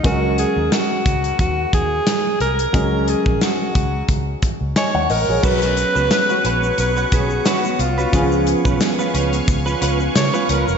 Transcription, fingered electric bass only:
X:1
M:4/4
L:1/16
Q:"Swing 16ths" 1/4=89
K:Dbmix
V:1 name="Fingered electric bass" clef=bass
D,,3 E,, z2 D,,2 E,,2 E,,2 z2 =C,,2 | D,,3 B,,, z2 D,,2 D,,2 z D,, z E,, =A,,, B,,, | =B,,,3 ^C,, z2 _B,,,2 =B,,,2 B,,,2 z2 =C,,2 | D,,3 C,, z2 D,,2 D,,2 D,,2 D, z D,, F,,, |]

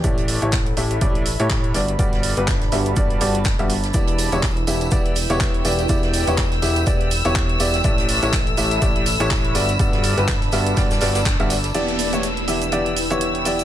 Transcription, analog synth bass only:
X:1
M:4/4
L:1/16
Q:"Swing 16ths" 1/4=123
K:Edor
V:1 name="Analog synth bass" clef=bass
A,,,3 A,,,3 A,,,2 A,,,3 A,,3 G,,,2 | G,,,3 G,,,3 G,,,2 G,,,2 G,,,3 G,,,3 | E,,,3 E,,,3 E,,,2 E,,,3 E,,,3 E,,,2 | E,,,3 E,,,3 E,,,2 E,,,3 E,,,3 E,,,2 |
A,,,3 A,,,3 A,,,2 A,,,3 A,,,3 G,,,2 | G,,,3 G,,,3 G,,,2 G,,,2 G,,,3 G,,,3 | E,,,16 |]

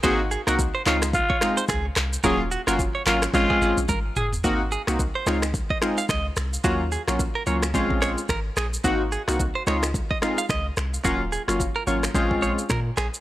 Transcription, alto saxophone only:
X:1
M:4/4
L:1/16
Q:"Swing 16ths" 1/4=109
K:Db
V:1 name="Alto saxophone"
A z2 G z2 F z F3 z4 z | A z2 G z2 F z F3 z3 A z | z16 | z16 |
z16 | z16 |]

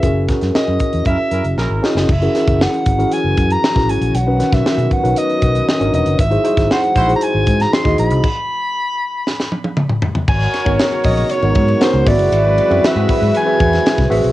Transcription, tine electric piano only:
X:1
M:4/4
L:1/16
Q:1/4=117
K:G#m
V:1 name="Tine electric piano"
[CEFGA]2 [CEFGA]2 [CEFGA]6- [CEFGA] z3 [CEFGA]2 | z [CEFGA] [CEFGA]4 z [CEFGA]4- [CEFGA] z [CEFGA]3 | z [CDFAB] [D,CFAB]4 z [CDFAB]4- [CDFAB] z [C=D^DFAc]3 | z [DEFG^B] [DEFGB]4 z [DEFGB]4- [DEFGB] z [DEFGd]3 |
z16 | z3 [B,DFAc]4- [B,DFAc] z [B,DFAc]3 [B,DFAc]2 [B,^B,FG=Be]2- | [B,^B,FG=Be]2 z [^B,FG=Be]2 [^B,FG=Be]3 z [^B,FG=Be]4 z [^B,FG=Be]2 |]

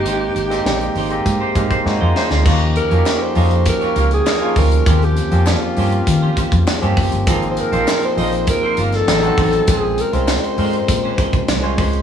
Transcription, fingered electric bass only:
X:1
M:4/4
L:1/16
Q:1/4=100
K:Ebmix
V:1 name="Fingered electric bass" clef=bass
A,,,2 A,,,2 B,,,2 A,,,2 A,, z A,, B,, A,, F,, z =D,, | E,,3 F,, z2 F,,3 z D,,2 z2 =D,,2 | E,,3 F,,2 z G,,2 E,2 z F,, z G,, _G,,, =G,,, | A,,,3 B,,, z2 B,,,3 z G,,,2 =A,,,2 A,,,2 |
B,,,3 C,,2 z A,,2 B,,2 z C, C,,2 D,,2 |]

